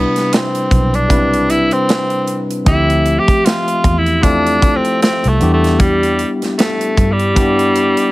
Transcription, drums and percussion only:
0.16 snare, closed hi-hat
0.33 snare, closed hi-hat
0.55 closed hi-hat
0.71 kick, closed hi-hat
0.94 closed hi-hat
1.10 kick, closed hi-hat
1.34 closed hi-hat
1.50 closed hi-hat
1.71 closed hi-hat
1.89 snare, closed hi-hat
2.10 closed hi-hat
2.27 closed hi-hat
2.51 closed hi-hat
2.66 kick, closed hi-hat
2.90 closed hi-hat
3.06 closed hi-hat
3.28 kick, closed hi-hat
3.46 snare, closed hi-hat
3.68 closed hi-hat
3.84 kick, closed hi-hat
4.06 closed hi-hat
4.23 kick, closed hi-hat
4.47 closed hi-hat
4.62 kick, closed hi-hat
4.85 closed hi-hat
5.02 snare, closed hi-hat
5.24 closed hi-hat
5.41 closed hi-hat
5.64 snare, closed hi-hat
5.80 kick, closed hi-hat
6.03 closed hi-hat
6.19 closed hi-hat
6.42 snare, closed hi-hat
6.59 snare, closed hi-hat
6.81 closed hi-hat
6.97 kick, closed hi-hat
7.19 closed hi-hat
7.36 kick, closed hi-hat
7.59 closed hi-hat
7.76 closed hi-hat
7.97 closed hi-hat

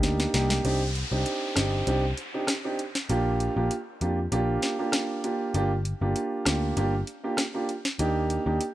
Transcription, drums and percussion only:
0.03 snare, closed hi-hat
0.20 snare
0.34 snare, closed hi-hat
0.50 snare
0.65 closed hi-hat
0.95 closed hi-hat
1.26 closed hi-hat
1.56 cross-stick, snare, closed hi-hat
1.87 closed hi-hat
2.17 closed hi-hat
2.47 cross-stick, snare, closed hi-hat
2.79 closed hi-hat
2.95 snare
3.10 closed hi-hat
3.40 closed hi-hat
3.71 closed hi-hat
4.01 closed hi-hat
4.32 closed hi-hat
4.62 snare, closed hi-hat
4.92 cross-stick, snare, closed hi-hat
5.24 closed hi-hat
5.54 closed hi-hat
5.85 closed hi-hat
6.16 closed hi-hat
6.46 cross-stick, snare, closed hi-hat
6.77 closed hi-hat
7.07 closed hi-hat
7.37 cross-stick, snare, closed hi-hat
7.69 closed hi-hat
7.85 snare
7.99 closed hi-hat
8.30 closed hi-hat
8.61 closed hi-hat

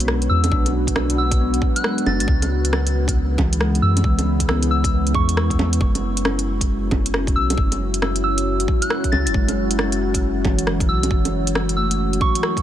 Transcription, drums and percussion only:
0.00 closed hi-hat
0.08 cross-stick
0.22 closed hi-hat
0.44 closed hi-hat, low bongo
0.52 kick
0.66 closed hi-hat, low bongo
0.87 kick, closed hi-hat
0.96 cross-stick, low bongo
1.10 closed hi-hat
1.31 kick, closed hi-hat
1.54 closed hi-hat
1.62 kick
1.76 closed hi-hat
1.84 cross-stick
1.98 closed hi-hat
2.06 low bongo
2.20 closed hi-hat
2.28 kick
2.42 closed hi-hat, low bongo
2.65 closed hi-hat
2.73 cross-stick, low bongo
2.87 closed hi-hat
3.08 kick, closed hi-hat
3.38 kick, low bongo
3.53 closed hi-hat
3.61 cross-stick
3.75 closed hi-hat
3.97 closed hi-hat, low bongo
4.04 kick
4.19 closed hi-hat, low bongo
4.40 kick, closed hi-hat
4.49 cross-stick, low bongo
4.63 closed hi-hat
4.84 kick, closed hi-hat
5.07 closed hi-hat
5.14 kick
5.29 closed hi-hat
5.37 cross-stick
5.50 kick, closed hi-hat
5.59 low bongo
5.73 closed hi-hat
5.81 kick
5.95 closed hi-hat, low bongo
6.17 closed hi-hat
6.25 cross-stick, low bongo
6.39 closed hi-hat
6.61 kick, closed hi-hat
6.91 kick, low bongo
7.06 closed hi-hat
7.14 cross-stick
7.27 kick, closed hi-hat
7.50 closed hi-hat, low bongo
7.58 kick
7.72 closed hi-hat, low bongo
7.94 closed hi-hat
8.02 cross-stick, low bongo
8.16 closed hi-hat
8.38 closed hi-hat
8.60 closed hi-hat
8.68 kick
8.82 closed hi-hat
8.90 cross-stick
9.04 kick, closed hi-hat
9.13 low bongo
9.27 closed hi-hat
9.34 kick
9.49 closed hi-hat, low bongo
9.71 closed hi-hat
9.79 cross-stick, low bongo
9.92 closed hi-hat
10.14 kick, closed hi-hat
10.45 kick, low bongo
10.59 closed hi-hat
10.67 cross-stick
10.80 kick, closed hi-hat
11.03 closed hi-hat, low bongo
11.11 kick
11.25 closed hi-hat, low bongo
11.47 closed hi-hat
11.55 cross-stick, low bongo
11.69 closed hi-hat
11.91 closed hi-hat
12.13 closed hi-hat
12.21 kick
12.35 closed hi-hat
12.43 cross-stick
12.57 kick, closed hi-hat

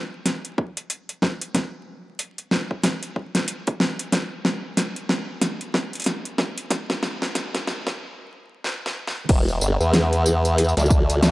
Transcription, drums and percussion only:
0.26 snare, closed hi-hat
0.45 closed hi-hat
0.58 kick
0.77 closed hi-hat
0.90 closed hi-hat
1.09 closed hi-hat
1.22 kick, snare
1.41 closed hi-hat
1.55 kick, snare, closed hi-hat
2.19 closed hi-hat
2.38 closed hi-hat
2.51 snare
2.71 kick
2.83 kick, snare, closed hi-hat
3.03 closed hi-hat
3.16 kick
3.35 snare, closed hi-hat
3.48 closed hi-hat
3.67 kick, closed hi-hat
3.80 snare
3.99 closed hi-hat
4.12 kick, snare, closed hi-hat
4.45 snare
4.77 snare, closed hi-hat
4.96 closed hi-hat
5.09 snare
5.42 snare, closed hi-hat
5.61 closed hi-hat
5.74 kick, snare
5.93 closed hi-hat
5.95 closed hi-hat
6.00 closed hi-hat
6.02 closed hi-hat
6.04 snare, closed hi-hat
6.06 closed hi-hat
6.25 closed hi-hat
6.38 kick, snare
6.58 closed hi-hat
6.71 kick, snare, closed hi-hat
6.90 snare
7.03 snare
7.22 snare
7.35 snare, closed hi-hat
7.55 snare, closed hi-hat
7.67 snare
7.87 kick, snare
8.64 snare
8.86 snare
9.08 snare
9.29 kick, closed hi-hat, crash, tambourine
9.48 tambourine
9.61 tambourine
9.80 tambourine
9.93 snare, closed hi-hat, tambourine
10.13 closed hi-hat, tambourine
10.26 tambourine
10.45 closed hi-hat, tambourine
10.58 closed hi-hat, tambourine
10.65 tambourine
10.69 tambourine
10.77 snare, closed hi-hat, tambourine
10.80 tambourine
10.86 tambourine
10.90 kick, tambourine
11.10 closed hi-hat, tambourine
11.23 snare, closed hi-hat, tambourine

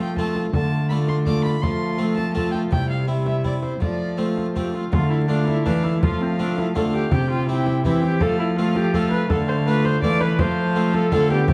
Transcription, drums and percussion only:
0.17 frame drum
0.35 frame drum
0.53 frame drum
1.08 frame drum
1.26 frame drum
1.46 frame drum
1.63 frame drum
2.18 frame drum
2.37 frame drum
2.54 frame drum
2.72 frame drum
3.26 frame drum
3.44 frame drum
3.63 frame drum
3.82 frame drum
4.38 frame drum
4.56 frame drum
4.74 frame drum
4.93 frame drum
5.48 frame drum
5.66 frame drum
5.85 frame drum
6.03 frame drum
6.58 frame drum
6.76 frame drum
6.93 frame drum
7.11 frame drum
7.67 frame drum
7.85 frame drum
8.03 frame drum
8.21 frame drum
8.75 frame drum
8.94 frame drum
9.12 frame drum
9.30 frame drum
9.85 frame drum
10.02 frame drum
10.21 frame drum
10.39 frame drum
10.94 frame drum
11.12 frame drum
11.30 frame drum
11.48 frame drum

